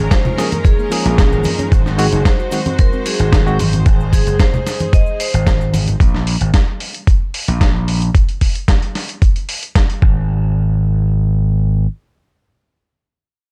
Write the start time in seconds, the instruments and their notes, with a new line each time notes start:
Already playing: string section G#3 C#4 D#4 A#4
0.11 synth arpeggio sound F3, vibraphone C5, kick, snare, closed hi-hat, cabasa
0.25 synth arpeggio sound F4, low conga, cabasa
0.37 tine electric piano F3 A#3 C#4 G#4, synth arpeggio sound F3, vibraphone A#4, snare, open hi-hat, cabasa
0.52 synth arpeggio sound A#3, closed hi-hat, high conga, cabasa
0.64 synth arpeggio sound F3, vibraphone G#4, kick, closed hi-hat, cabasa
0.79 synth arpeggio sound A#3, cabasa
0.90 tine electric piano F3 A#3 C#4 G#4, synth arpeggio sound F4, open hi-hat, cabasa
1.05 slap bass A#1, synth arpeggio sound F3, closed hi-hat, cabasa
1.18 synth arpeggio sound C#4, kick, snare, closed hi-hat, cabasa
1.32 slap bass G#1, synth arpeggio sound A#4, cabasa
1.44 synth arpeggio sound A#4, open hi-hat, high conga, cabasa
1.59 synth arpeggio sound C#4, closed hi-hat, high conga, cabasa
1.72 slap bass G#1, synth arpeggio sound F#3, string section F#4 C5, kick, closed hi-hat, cabasa
1.86 synth arpeggio sound C4, snare, cabasa
1.98 tine electric piano D#3 G#3 C4 F#4, synth arpeggio sound F#3, vibraphone G#4, open hi-hat, cabasa
2.12 slap bass F#1, synth arpeggio sound D#4, closed hi-hat, cabasa
2.25 synth arpeggio sound F#3, vibraphone C5, kick, snare, closed hi-hat, cabasa
2.39 synth arpeggio sound F#4, cabasa
2.51 tine electric piano D#3 G#3 C4 F#4, synth arpeggio sound F#3, open hi-hat, cabasa
2.66 synth arpeggio sound C4, closed hi-hat, high conga, cabasa
2.79 synth arpeggio sound F#3, vibraphone A#4, kick, closed hi-hat, cabasa
2.93 synth arpeggio sound C4, cabasa
3.06 synth arpeggio sound F#3, vibraphone G#4, open hi-hat, cabasa
3.19 slap bass G#1, synth arpeggio sound D#4, closed hi-hat, cabasa
3.32 synth arpeggio sound F#3, kick, snare, closed hi-hat, cabasa
3.46 tine electric piano D#3 G#3 C4 F#4, synth arpeggio sound F#4, cabasa
3.59 synth arpeggio sound F#3, open hi-hat, high conga, cabasa
3.73 synth arpeggio sound C4, closed hi-hat, high conga, cabasa
3.86 string section G#4, kick, closed hi-hat, cabasa
4.00 cabasa
4.13 vibraphone G#4, kick, open hi-hat, cabasa
4.27 slap bass F#1, closed hi-hat, cabasa
4.39 vibraphone C5, kick, snare, closed hi-hat, cabasa
4.54 low conga, cabasa
4.66 snare, open hi-hat, cabasa
4.80 closed hi-hat, high conga, cabasa
4.93 vibraphone D#5, kick, closed hi-hat, cabasa
5.06 cabasa
5.20 vibraphone C5, open hi-hat, cabasa
5.34 slap bass G#1, closed hi-hat, cabasa
5.47 kick, snare, closed hi-hat, cabasa
5.61 cabasa
5.74 open hi-hat, high conga, cabasa
5.88 closed hi-hat, high conga, cabasa
6.00 slap bass A#1, kick, closed hi-hat
6.15 snare
6.27 open hi-hat
6.41 slap bass G#1, closed hi-hat
6.54 kick, snare, closed hi-hat
6.80 open hi-hat
6.94 closed hi-hat
7.07 kick, closed hi-hat
7.34 open hi-hat
7.48 slap bass A#1, closed hi-hat
7.61 kick, snare, closed hi-hat
7.88 open hi-hat
8.02 closed hi-hat
8.15 kick, closed hi-hat
8.29 closed hi-hat
8.41 kick, open hi-hat
8.55 closed hi-hat
8.68 kick, snare, closed hi-hat
8.82 closed hi-hat
8.95 snare, open hi-hat
9.09 closed hi-hat
9.22 kick, closed hi-hat
9.36 closed hi-hat
9.49 open hi-hat
9.63 closed hi-hat
9.75 kick, snare, closed hi-hat
9.90 closed hi-hat
10.02 slap bass G#1, kick